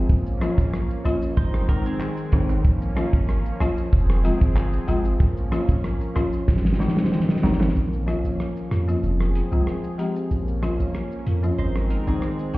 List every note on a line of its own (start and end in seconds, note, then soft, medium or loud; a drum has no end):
0.00 1.34 F3 medium
0.09 0.35 A#1 loud
0.09 1.36 A#3 medium
0.09 1.36 C#4 medium
0.09 kick loud
0.09 shaker medium
0.26 shaker medium
0.41 0.55 F3 medium
0.41 0.55 A#3 medium
0.41 0.55 C#4 medium
0.41 0.55 F4 medium
0.41 cross-stick loud
0.41 closed hi-hat medium
0.41 shaker medium
0.58 0.84 A#1 medium
0.58 kick medium
0.58 shaker medium
0.73 cross-stick medium
0.73 shaker medium
0.90 shaker medium
1.04 1.19 A#1 medium
1.04 1.18 F3 medium
1.04 1.19 A#3 medium
1.04 1.19 C#4 medium
1.04 1.19 F4 loud
1.04 closed hi-hat medium
1.04 shaker medium
1.22 shaker medium
1.37 1.63 G#1 loud
1.37 2.64 D#3 medium
1.37 2.64 G#3 medium
1.37 2.64 C4 medium
1.37 1.68 D#4 medium
1.37 1.68 C5 medium
1.37 kick medium
1.37 shaker medium
1.54 cross-stick loud
1.54 shaker soft
1.68 1.82 D#3 medium
1.68 1.83 G#3 medium
1.68 1.83 C4 medium
1.68 1.83 D#4 loud
1.68 1.85 A#4 medium
1.68 kick loud
1.68 closed hi-hat medium
1.68 shaker medium
1.86 2.61 C4 medium
1.86 2.61 G#4 medium
1.86 shaker medium
2.01 cross-stick medium
2.01 clap medium
2.01 shaker medium
2.17 shaker medium
2.17 shaker soft
2.32 2.59 G#1 loud
2.32 2.46 D#3 medium
2.32 2.46 G#3 medium
2.32 2.47 C4 medium
2.32 2.47 D#4 loud
2.32 kick loud
2.32 closed hi-hat medium
2.32 high timbale medium
2.32 shaker medium
2.49 high timbale medium
2.49 shaker medium
2.65 2.91 A#1 loud
2.65 6.44 F3 medium
2.65 3.91 A#3 medium
2.65 3.91 C#4 medium
2.65 kick loud
2.65 shaker medium
2.82 shaker medium
2.96 3.10 F3 medium
2.96 3.10 A#3 medium
2.96 3.10 C#4 medium
2.96 3.11 F4 medium
2.96 cross-stick loud
2.96 closed hi-hat medium
2.96 shaker soft
3.13 3.39 G#1 medium
3.13 kick loud
3.13 shaker medium
3.29 cross-stick medium
3.29 shaker medium
3.45 shaker medium
3.60 3.74 A#1 loud
3.60 3.74 F3 medium
3.60 3.74 A#3 medium
3.60 3.74 C#4 medium
3.60 3.75 F4 loud
3.60 cross-stick medium
3.60 closed hi-hat medium
3.60 shaker medium
3.78 shaker medium
3.92 4.32 F1 loud
3.92 5.19 C4 medium
3.92 5.19 G#4 medium
3.92 kick medium
3.92 shaker medium
4.09 cross-stick loud
4.09 shaker soft
4.09 shaker medium
4.24 4.38 F3 medium
4.24 4.38 G#3 medium
4.24 4.38 C4 medium
4.24 4.38 F4 loud
4.24 closed hi-hat medium
4.24 shaker medium
4.41 4.79 G1 medium
4.41 kick medium
4.41 shaker medium
4.56 cross-stick medium
4.56 clap medium
4.56 shaker medium
4.73 shaker soft
4.73 shaker medium
4.87 5.14 G#1 medium
4.87 5.01 F3 medium
4.87 5.02 G#3 medium
4.87 5.02 C4 medium
4.87 5.02 F4 loud
4.87 closed hi-hat medium
4.87 shaker medium
5.04 shaker medium
5.20 5.46 A#1 loud
5.20 6.47 A#3 medium
5.20 6.47 C#4 medium
5.20 kick loud
5.20 shaker medium
5.37 shaker medium
5.51 5.65 F3 medium
5.51 5.65 A#3 medium
5.51 5.66 C#4 medium
5.51 5.66 F4 medium
5.51 cross-stick loud
5.51 closed hi-hat medium
5.51 shaker medium
5.69 5.95 A#1 medium
5.69 kick medium
5.69 shaker medium
5.84 cross-stick medium
5.84 shaker medium
6.00 shaker medium
6.15 6.30 A#1 medium
6.15 6.29 F3 medium
6.15 6.29 A#3 medium
6.15 6.30 C#4 medium
6.15 6.30 F4 loud
6.15 cross-stick loud
6.15 closed hi-hat medium
6.15 shaker medium
6.33 shaker medium
6.48 6.74 G#1 loud
6.48 7.74 D#3 medium
6.48 7.74 G#3 medium
6.48 7.75 C4 medium
6.48 kick loud
6.48 snare medium
6.48 shaker medium
6.57 snare medium
6.65 snare medium
6.65 shaker soft
6.73 snare medium
6.79 6.93 D#3 medium
6.79 6.93 G#3 medium
6.79 6.93 C4 medium
6.79 6.94 D#4 loud
6.79 snare medium
6.79 shaker medium
6.88 snare medium
6.96 snare medium
6.96 shaker medium
7.04 snare medium
7.11 snare medium
7.11 shaker medium
7.20 snare medium
7.28 snare loud
7.28 shaker soft
7.36 snare medium
7.43 7.69 G#1 loud
7.43 7.57 D#3 medium
7.43 7.57 G#3 medium
7.43 7.57 C4 medium
7.43 7.57 D#4 loud
7.43 snare loud
7.43 high timbale medium
7.43 shaker medium
7.52 snare medium
7.60 snare loud
7.60 high timbale medium
7.60 shaker medium
7.68 snare medium
7.76 8.15 A#1 loud
7.76 11.55 F3 medium
7.76 9.02 A#3 medium
7.76 9.02 C#4 medium
7.76 shaker medium
7.93 shaker medium
8.07 8.21 F3 medium
8.07 8.21 A#3 medium
8.07 8.21 C#4 medium
8.07 8.21 F4 medium
8.07 cross-stick medium
8.07 closed hi-hat medium
8.07 shaker soft
8.25 8.37 A#1 medium
8.25 shaker medium
8.40 cross-stick medium
8.40 shaker medium
8.57 shaker medium
8.71 8.97 F2 medium
8.71 8.78 C#4 medium
8.71 8.78 F4 medium
8.71 cross-stick medium
8.71 closed hi-hat medium
8.71 shaker medium
8.88 9.00 F3 medium
8.88 9.00 A#3 medium
8.88 9.00 C#4 medium
8.88 9.01 F4 medium
8.88 shaker medium
9.03 9.43 F1 loud
9.03 10.30 C4 medium
9.03 10.30 G#4 medium
9.03 shaker medium
9.20 cross-stick loud
9.20 shaker soft
9.34 9.42 C4 medium
9.34 9.42 F4 medium
9.34 closed hi-hat medium
9.34 shaker medium
9.51 9.64 C2 loud
9.51 9.64 F3 medium
9.51 9.64 G#3 medium
9.51 9.64 C4 medium
9.51 9.64 F4 medium
9.51 shaker medium
9.67 cross-stick medium
9.67 shaker medium
9.84 shaker medium
9.98 10.12 F3 medium
9.98 10.12 G#3 medium
9.98 10.12 C4 medium
9.98 10.13 G4 medium
9.98 closed hi-hat medium
9.98 shaker medium
10.16 shaker medium
10.31 10.70 A#1 loud
10.31 11.58 A#3 medium
10.31 11.58 C#4 medium
10.31 shaker medium
10.48 shaker medium
10.62 10.76 F3 medium
10.62 10.76 A#3 medium
10.62 10.76 C#4 medium
10.62 10.77 F4 medium
10.62 cross-stick medium
10.62 closed hi-hat medium
10.62 shaker soft
10.80 10.92 A#1 medium
10.80 shaker medium
10.94 cross-stick medium
10.94 shaker medium
11.12 shaker medium
11.25 11.52 F2 medium
11.25 11.33 C#4 medium
11.25 11.33 F4 loud
11.25 closed hi-hat medium
11.25 shaker medium
11.43 11.55 F3 medium
11.43 11.55 A#3 medium
11.43 11.55 C#4 medium
11.43 11.56 F4 medium
11.43 shaker medium
11.58 11.98 G#1 loud
11.58 12.58 D#3 medium
11.58 12.58 G#3 medium
11.58 12.58 C4 medium
11.58 11.89 D#4 medium
11.58 11.89 C5 medium
11.58 shaker medium
11.75 cross-stick medium
11.75 shaker soft
11.89 11.97 C4 medium
11.89 11.97 D#4 medium
11.89 12.06 A#4 medium
11.89 closed hi-hat medium
11.89 shaker medium
12.07 12.20 A#1 medium
12.07 12.19 D#3 medium
12.07 12.19 G#3 medium
12.07 12.19 C4 medium
12.07 12.58 C4 medium
12.07 12.20 D#4 medium
12.07 12.58 G#4 medium
12.07 shaker medium
12.22 cross-stick medium
12.22 shaker medium
12.39 shaker medium
12.54 12.58 G#1 loud
12.54 12.58 D#3 medium
12.54 12.58 G#3 medium
12.54 12.58 C4 medium
12.54 12.58 D#4 loud
12.54 closed hi-hat medium
12.54 shaker medium